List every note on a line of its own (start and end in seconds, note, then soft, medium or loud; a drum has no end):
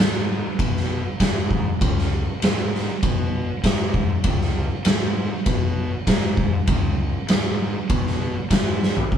0.00 0.41 G#2 medium
0.00 snare loud
0.59 1.03 B2 medium
0.59 kick loud
0.59 ride bell medium
0.77 snare soft
1.20 1.64 G#2 loud
1.20 kick medium
1.20 snare loud
1.20 ride bell medium
1.51 kick medium
1.81 2.25 C#2 loud
1.81 kick loud
1.81 ride bell medium
1.98 snare soft
2.42 2.86 G#2 medium
2.42 snare loud
2.42 ride bell medium
2.75 snare soft
3.03 3.47 B2 medium
3.03 kick loud
3.03 ride bell medium
3.64 4.07 G#2 medium
3.64 kick medium
3.64 snare loud
3.64 ride bell medium
3.94 kick medium
4.24 4.68 C#2 medium
4.24 kick loud
4.24 ride bell medium
4.41 snare soft
4.85 5.29 G#2 medium
4.85 snare loud
4.85 ride bell medium
5.46 5.90 B2 loud
5.46 kick loud
5.46 ride bell medium
6.07 6.51 G#2 loud
6.07 kick medium
6.07 snare loud
6.07 ride bell medium
6.37 kick medium
6.67 7.12 C#2 medium
6.67 kick loud
6.67 ride bell medium
7.28 7.73 G#2 medium
7.28 snare loud
7.28 ride bell medium
7.90 8.34 B2 medium
7.90 kick loud
7.90 ride bell medium
8.07 snare soft
8.51 8.95 G#2 loud
8.51 kick medium
8.51 snare loud
8.51 ride bell medium
8.83 snare medium
8.97 floor tom medium
9.12 9.18 C#2 medium
9.12 kick loud
9.12 floor tom medium